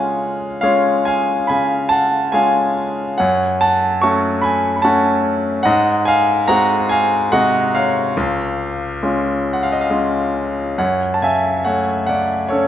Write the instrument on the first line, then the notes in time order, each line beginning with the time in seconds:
grand piano
Already playing: C#3 G#3 C#4 F4 C#5 F5 F#5 G#5
0.61 G#3 C#4 F4 C#5 F5
1.05 F5 G#5
1.47 C#3 G#5 B5
1.89 F#5 A5
2.32 G#3 C#4 F4 F5 G#5
3.18 F#2 C#5 F#5
3.61 F#5 A5
4.02 A3 C#4 F#4 A5 C#6
4.42 G#5 B5
4.76 B5
4.82 A3 C#4 F#4 F#5 A5
5.63 G#2 D#5 F#5
6.05 F5 G#5
6.48 G#3 C4 F#4 F#5 A#5
6.89 F5 G#5
7.32 C3 G#3 F#4 D#5 F#5
7.75 C#5 F5
8.17 C#2
9.03 G#3 C#4 F4
9.53 F#5
9.63 F5
9.72 D#5
9.81 F5
9.90 G#3 C#4 F4
10.78 F#2 C#5 F#5
11.14 A5
11.22 C#3 E5 G#5
11.65 A3 C#5 F#5
12.07 C#3 D5 F#5
12.49 C#4 A4 C#5